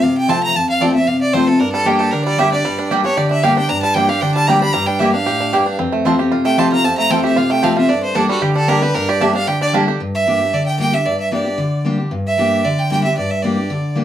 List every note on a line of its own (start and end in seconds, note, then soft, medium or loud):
0.03 0.53 C3 loud
0.03 0.17 F5 medium
0.18 0.31 G5 loud
0.28 0.54 F3 medium
0.28 0.54 A3 loud
0.28 0.38 C4 loud
0.28 0.54 C4 medium
0.28 0.38 F4 medium
0.28 0.55 F4 loud
0.28 0.39 C5 loud
0.28 0.39 A5 loud
0.28 0.43 A5 loud
0.43 0.58 A#5 loud
0.55 1.05 F2 medium
0.55 0.69 A5 loud
0.70 0.83 F5 loud
0.80 0.94 F3 medium
0.80 0.94 A3 loud
0.80 0.91 C4 medium
0.80 0.95 C4 loud
0.80 0.91 F4 medium
0.80 0.93 F4 loud
0.80 0.91 C5 loud
0.80 0.94 D5 loud
0.80 0.91 A5 medium
0.94 1.08 C4 medium
0.94 1.07 F4 medium
0.94 1.09 E5 loud
1.07 1.58 C3 medium
1.07 1.21 F5 loud
1.21 1.35 D5 loud
1.33 1.47 F3 medium
1.33 1.47 A3 medium
1.33 1.43 C4 medium
1.33 1.48 C4 medium
1.33 1.43 F4 loud
1.33 1.47 F4 medium
1.33 1.49 C5 medium
1.33 1.44 C5 loud
1.33 1.44 A5 loud
1.48 1.61 C4 medium
1.48 1.60 F4 medium
1.48 1.61 A4 medium
1.60 2.10 G2 loud
1.60 1.86 D4 medium
1.60 1.72 A#4 loud
1.73 2.26 G3 medium
1.73 1.88 A4 loud
1.85 2.11 G3 medium
1.85 2.11 A#3 loud
1.85 1.96 A#3 medium
1.85 2.12 D4 medium
1.85 2.11 D4 medium
1.85 2.01 G4 medium
1.85 1.96 G4 medium
1.85 2.12 G4 loud
1.85 1.96 D5 medium
1.85 1.96 G5 medium
1.99 2.38 G4 medium
1.99 2.12 A4 medium
2.11 2.63 D3 medium
2.11 2.52 D4 medium
2.11 2.24 A#4 medium
2.25 2.64 G3 medium
2.25 2.40 D5 loud
2.38 2.51 G3 medium
2.38 2.48 A#3 loud
2.38 2.52 A#3 medium
2.38 2.52 D4 medium
2.38 2.91 G4 medium
2.38 2.48 G4 medium
2.38 2.51 G4 loud
2.38 2.48 D5 loud
2.38 2.52 E5 loud
2.38 2.48 G5 loud
2.52 2.78 D4 medium
2.52 2.66 D4 medium
2.52 2.64 G4 medium
2.52 2.89 D5 loud
2.65 3.15 G2 loud
2.65 3.83 G3 medium
2.79 3.05 D4 medium
2.90 3.04 G3 medium
2.90 3.00 A#3 medium
2.90 3.04 A#3 loud
2.90 3.05 D4 loud
2.90 3.17 G4 medium
2.90 3.01 G4 medium
2.90 3.03 G4 loud
2.90 3.01 D5 medium
2.90 3.01 G5 loud
3.04 3.31 D4 medium
3.04 3.18 D4 medium
3.04 3.17 G4 medium
3.04 3.19 C#5 loud
3.17 3.67 D3 loud
3.17 3.43 G4 medium
3.17 3.30 D5 medium
3.31 3.57 D4 medium
3.31 3.44 E5 medium
3.43 3.57 G3 medium
3.43 3.53 A#3 loud
3.43 3.57 A#3 loud
3.43 3.57 D4 medium
3.43 4.09 G4 medium
3.43 3.53 G4 loud
3.43 3.56 G4 loud
3.43 3.53 D5 loud
3.43 3.56 F5 medium
3.43 3.53 G5 loud
3.57 3.68 D4 medium
3.57 3.70 D4 medium
3.57 3.69 G4 medium
3.57 3.71 G5 loud
3.69 4.20 G2 medium
3.69 3.95 D4 medium
3.69 3.82 A#5 loud
3.82 4.20 G3 medium
3.82 3.96 A5 loud
3.94 4.08 G3 loud
3.94 4.09 A#3 loud
3.94 4.05 A#3 medium
3.94 4.21 D4 medium
3.94 4.09 D4 loud
3.94 4.05 G4 medium
3.94 4.07 G4 loud
3.94 4.06 D5 medium
3.94 4.10 G5 loud
3.94 4.06 G5 loud
4.08 4.22 D4 soft
4.08 4.21 G4 medium
4.08 4.46 G4 medium
4.08 4.22 F5 loud
4.21 4.72 D3 loud
4.21 4.59 D4 medium
4.21 4.34 G5 loud
4.35 4.72 G3 medium
4.35 4.49 A5 loud
4.47 4.61 G3 medium
4.47 4.58 A#3 medium
4.47 4.62 A#3 loud
4.47 4.62 D4 loud
4.47 4.85 G4 medium
4.47 4.58 G4 loud
4.47 4.60 G4 loud
4.47 4.58 D5 loud
4.47 4.58 G5 loud
4.47 4.60 A#5 loud
4.61 4.86 D4 medium
4.61 4.75 D4 medium
4.61 4.74 G4 medium
4.61 4.75 B5 loud
4.73 5.24 G2 loud
4.73 5.11 G3 medium
4.73 4.88 A#5 loud
4.86 5.13 D4 medium
4.86 5.01 G5 loud
4.99 5.13 G3 loud
4.99 5.14 A#3 medium
4.99 5.10 A#3 medium
4.99 5.14 D4 loud
4.99 5.25 G4 medium
4.99 5.10 G4 medium
4.99 5.13 G4 loud
4.99 5.11 D5 medium
4.99 5.12 E5 medium
4.99 5.10 G5 loud
5.12 5.39 D4 medium
5.12 5.27 D4 soft
5.12 5.26 G4 medium
5.12 5.75 F5 loud
5.26 5.52 A2 medium
5.26 5.52 G4 medium
5.41 5.65 D4 medium
5.53 5.78 G2 medium
5.53 5.62 A#3 medium
5.53 5.62 G4 loud
5.53 5.79 G4 medium
5.53 5.63 D5 loud
5.53 5.63 G5 loud
5.66 5.79 D4 medium
5.79 6.29 F2 loud
5.79 6.16 C4 medium
5.92 6.45 A3 medium
6.05 6.18 F3 medium
6.05 6.19 A3 medium
6.05 6.15 C4 medium
6.05 6.19 C4 loud
6.05 6.30 F4 medium
6.05 6.15 F4 medium
6.05 6.17 F4 medium
6.05 6.15 C5 medium
6.05 6.15 A5 loud
6.19 6.32 C4 soft
6.19 6.31 F4 medium
6.19 6.56 G4 medium
6.32 6.82 C3 loud
6.32 6.69 F4 medium
6.45 6.98 A3 medium
6.45 6.60 G5 loud
6.57 6.71 F3 loud
6.57 6.71 A3 medium
6.57 6.67 C4 loud
6.57 6.71 C4 medium
6.57 6.68 F4 loud
6.57 6.70 F4 medium
6.57 6.95 G4 medium
6.57 6.68 C5 loud
6.57 6.72 A5 loud
6.57 6.68 A5 loud
6.71 6.85 C4 medium
6.71 6.84 F4 medium
6.71 7.08 F4 medium
6.71 6.86 A#5 loud
6.84 7.34 F2 loud
6.84 7.22 C4 medium
6.84 6.97 A5 loud
6.98 7.50 A3 medium
6.98 7.12 A#5 loud
7.10 7.35 F3 medium
7.10 7.36 A3 loud
7.10 7.20 C4 loud
7.10 7.36 C4 loud
7.10 7.35 F4 medium
7.10 7.20 F4 medium
7.10 7.36 F4 loud
7.10 7.20 C5 medium
7.10 7.24 G5 loud
7.10 7.20 A5 loud
7.24 7.61 G4 medium
7.24 7.39 E5 medium
7.36 7.87 C3 medium
7.36 7.74 F4 medium
7.36 7.53 F5 medium
7.50 8.29 A3 medium
7.50 7.65 G5 loud
7.62 7.76 F3 loud
7.62 7.77 A3 loud
7.62 7.72 C4 medium
7.62 7.77 C4 loud
7.62 7.72 F4 loud
7.62 7.75 F4 loud
7.62 7.89 G4 medium
7.62 7.72 C5 loud
7.62 7.77 F5 medium
7.62 7.73 A5 loud
7.76 7.90 C4 medium
7.76 7.89 F4 medium
7.76 7.91 E5 medium
7.89 8.39 G2 loud
7.89 8.15 D4 medium
7.89 8.03 D5 loud
8.03 8.17 C5 medium
8.15 8.28 G3 medium
8.15 8.28 A#3 loud
8.15 8.25 A#3 medium
8.15 8.55 D4 medium
8.15 8.29 D4 loud
8.15 8.25 G4 medium
8.15 8.29 A4 medium
8.15 8.27 A4 loud
8.15 8.25 D5 medium
8.15 8.25 A5 loud
8.28 9.69 G3 medium
8.28 8.42 D4 medium
8.28 8.44 F#4 medium
8.28 8.41 A4 medium
8.42 8.92 D3 loud
8.42 8.82 G4 medium
8.42 8.55 G4 medium
8.55 8.68 D4 medium
8.55 8.70 A4 loud
8.68 8.81 G3 medium
8.68 8.78 A#3 loud
8.68 8.81 A#3 medium
8.68 8.94 D4 medium
8.68 8.82 D4 loud
8.68 8.78 G4 loud
8.68 8.80 A4 medium
8.68 8.83 A#4 loud
8.68 8.78 D5 loud
8.68 8.78 A5 loud
8.81 8.95 D4 medium
8.81 9.08 G4 medium
8.81 8.94 A4 medium
8.81 8.96 B4 loud
8.95 9.45 G2 loud
8.95 9.20 D4 medium
8.95 9.11 A#4 loud
9.09 9.45 G4 medium
9.09 9.23 D5 loud
9.20 9.34 G3 medium
9.20 9.30 A#3 medium
9.20 9.34 A#3 loud
9.20 9.34 D4 medium
9.20 9.34 D4 loud
9.20 9.30 G4 medium
9.20 9.32 A4 loud
9.20 9.30 D5 medium
9.20 9.35 E5 medium
9.20 9.30 A5 medium
9.34 9.60 D4 medium
9.34 9.47 D4 medium
9.34 9.46 A4 medium
9.34 9.49 F5 loud
9.47 9.97 D3 loud
9.47 9.85 G4 medium
9.47 9.61 G5 loud
9.61 9.73 D4 medium
9.61 9.69 D5 loud
9.73 9.87 G3 loud
9.73 9.83 A#3 loud
9.73 9.87 A#3 medium
9.73 10.00 D4 medium
9.73 9.87 D4 loud
9.73 9.83 G4 loud
9.73 9.86 A4 loud
9.73 9.83 D5 loud
9.73 9.83 A5 loud
9.87 10.00 D4 medium
9.87 10.00 G4 medium
9.87 9.99 A4 medium
10.00 10.50 G2 medium
10.15 10.55 E5 loud
10.27 10.40 G3 medium
10.27 10.40 A#3 medium
10.27 10.40 D4 loud
10.27 10.39 G4 loud
10.40 10.53 D4 medium
10.40 10.52 G4 medium
10.53 11.03 D3 medium
10.53 10.66 D5 medium
10.66 10.78 G5 loud
10.79 10.92 G3 medium
10.79 10.93 A#3 medium
10.79 10.93 D4 loud
10.79 10.91 G4 loud
10.79 10.95 G5 loud
10.92 11.06 D4 soft
10.92 11.05 G4 medium
10.92 11.07 E5 loud
11.05 11.56 G2 medium
11.05 11.19 D5 loud
11.21 11.32 E5 medium
11.31 11.45 G3 medium
11.31 11.45 A#3 medium
11.31 11.45 D4 medium
11.31 11.44 G4 loud
11.31 11.82 D5 medium
11.45 11.58 D4 soft
11.45 11.58 G4 medium
11.58 12.09 D3 loud
11.85 11.98 G3 medium
11.85 11.98 A#3 medium
11.85 11.99 D4 loud
11.85 11.97 G4 loud
11.98 12.11 D4 medium
11.98 12.10 G4 medium
12.11 12.62 G2 medium
12.27 12.66 E5 loud
12.37 12.63 G3 medium
12.37 12.63 A#3 medium
12.37 12.63 D4 loud
12.37 12.64 G4 loud
12.65 13.15 D3 medium
12.65 12.81 D5 medium
12.79 12.91 G5 loud
12.91 13.04 G3 medium
12.91 13.04 A#3 medium
12.91 13.04 D4 medium
12.91 13.03 G4 loud
12.91 13.04 G5 loud
13.04 13.18 D4 soft
13.04 13.17 G4 medium
13.04 13.16 E5 loud
13.18 13.68 G2 medium
13.18 13.32 D5 loud
13.30 13.44 E5 medium
13.42 13.57 G3 medium
13.42 13.57 A#3 medium
13.42 13.57 D4 medium
13.42 13.56 G4 medium
13.42 13.96 D5 medium
13.57 13.70 D4 medium
13.57 13.70 G4 medium
13.70 14.04 D3 medium
13.95 14.04 G3 medium
13.95 14.04 A#3 medium
13.95 14.04 D4 loud
13.95 14.04 G4 medium